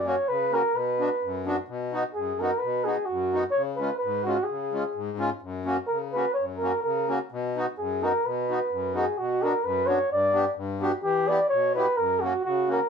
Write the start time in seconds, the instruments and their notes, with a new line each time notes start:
Already playing: accordion F#2
0.05 accordion A#3 C#4 F#4, flugelhorn C#5
0.28 accordion C#3, flugelhorn B4
0.51 accordion A#3 C#4 F#4, flugelhorn A#4
0.74 accordion B2, flugelhorn B4
0.99 accordion B3 D4 F#4
1.23 accordion F#2
1.45 accordion B3 D4 F#4
1.68 accordion B2
1.92 accordion B3 D#4 F#4
2.14 accordion F#2, flugelhorn G#4
2.39 accordion B3 D#4 F#4, flugelhorn A#4
2.58 flugelhorn B4
2.63 accordion B2
2.84 accordion B3 D#4 F#4, flugelhorn G#4
3.05 accordion F#2, flugelhorn F#4
3.33 accordion B3 D#4 F#4
3.51 flugelhorn C#5
3.56 accordion C#3
3.76 accordion G#3 C#4, flugelhorn B4
3.81 accordion F4
3.97 flugelhorn B4
4.04 accordion G#2
4.24 accordion G#3 C#4, flugelhorn F#4
4.28 accordion F4
4.43 flugelhorn G#4
4.49 accordion C#3
4.72 accordion G#3 C#4 F4
4.95 accordion G#2
5.18 accordion G#3 C#4 F4
5.42 accordion F#2
5.65 accordion A#3 C#4 F#4
5.87 accordion C#3, flugelhorn A#4
6.13 accordion A#3 C#4 F#4, flugelhorn B4
6.34 flugelhorn C#5
6.38 accordion F#2
6.58 accordion A#3, flugelhorn A#4
6.62 accordion C#4 F#4
6.82 accordion C#3, flugelhorn A#4
7.08 accordion A#3 C#4 F#4
7.32 accordion B2
7.56 accordion B3 D#4 F#4
7.78 accordion F#2, flugelhorn G#4
8.02 accordion B3 D#4 F#4, flugelhorn A#4
8.25 accordion B2, flugelhorn B4
8.49 accordion B3 D#4 F#4
8.71 accordion F#2
8.94 accordion B3 D#4 F#4, flugelhorn G#4
9.18 accordion B2, flugelhorn F#4
9.42 accordion B3 D4 F#4, flugelhorn A#4
9.64 accordion F#2, flugelhorn B4
9.86 accordion B3 D4 F#4, flugelhorn C#5
10.11 accordion G2, flugelhorn D5
10.33 accordion B3 D4 G4
10.56 accordion G2
10.80 accordion B3 D4 G4, flugelhorn F#4
11.03 accordion E3, flugelhorn G4
11.28 accordion B3 E4 G4, flugelhorn D5
11.49 accordion B2, flugelhorn C#5
11.75 accordion B3 E4 G4, flugelhorn B4
11.97 accordion F#2, flugelhorn A#4
12.21 accordion A#3 C#4 F#4, flugelhorn F#4
12.44 accordion C#3, flugelhorn F#4
12.68 accordion A#3 C#4 F#4, flugelhorn A#4